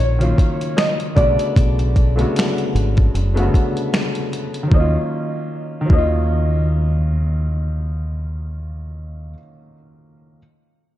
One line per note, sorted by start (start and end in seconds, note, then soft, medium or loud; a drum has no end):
0.00 0.32 A#1 medium
0.00 0.19 D#3 medium
0.00 0.19 F#3 medium
0.00 0.20 A#3 medium
0.00 0.22 C#4 medium
0.00 0.23 F4 medium
0.00 0.79 C#5 medium
0.19 1.16 D#3 medium
0.19 1.16 F#3 medium
0.19 1.17 A#3 medium
0.19 1.17 C#4 medium
0.19 1.18 F4 medium
0.19 closed hi-hat soft
0.38 kick medium
0.38 closed hi-hat medium
0.61 closed hi-hat soft
0.77 0.86 D#5 loud
0.77 finger snap medium
0.77 snare loud
0.77 closed hi-hat medium
1.00 closed hi-hat soft
1.15 1.36 B1 loud
1.15 1.96 C#3 medium
1.15 1.95 D3 medium
1.15 1.95 A3 medium
1.15 1.96 B3 medium
1.15 4.28 D5 loud
1.15 kick medium
1.15 closed hi-hat medium
1.19 1.97 F#4 medium
1.39 closed hi-hat soft
1.56 2.24 B1 loud
1.56 kick loud
1.56 closed hi-hat medium
1.79 closed hi-hat soft
1.96 kick medium
1.96 closed hi-hat medium
2.16 3.06 C#3 medium
2.16 3.05 D3 medium
2.16 3.05 A3 medium
2.16 3.06 B3 medium
2.16 closed hi-hat soft
2.20 3.07 F#4 medium
2.36 finger snap medium
2.36 snare loud
2.36 closed hi-hat medium
2.58 closed hi-hat soft
2.75 3.08 G#1 medium
2.75 closed hi-hat medium
2.97 kick medium
2.97 closed hi-hat soft
3.14 3.48 F#1 loud
3.14 closed hi-hat medium
3.34 3.36 C#3 medium
3.34 4.39 C#3 medium
3.34 4.38 A3 medium
3.34 4.38 B3 medium
3.34 closed hi-hat soft
3.38 4.41 D3 medium
3.38 4.40 F#4 medium
3.54 kick medium
3.54 closed hi-hat medium
3.77 closed hi-hat soft
3.94 finger snap medium
3.94 snare medium
3.94 closed hi-hat medium
4.15 closed hi-hat soft
4.33 closed hi-hat medium
4.54 closed hi-hat soft
4.63 4.91 D#3 medium
4.68 4.93 F#3 medium
4.72 4.96 D#2 medium
4.72 4.95 A#3 medium
4.72 4.97 D#5 medium
4.72 kick loud
4.76 4.98 C#4 medium
4.76 5.00 F4 medium
5.81 9.29 D#3 medium
5.86 9.31 F#3 medium
5.86 9.33 A#3 medium
5.90 9.34 D#2 medium
5.90 9.35 D#5 medium
5.90 kick medium
5.94 9.35 C#4 medium
5.98 9.38 F4 medium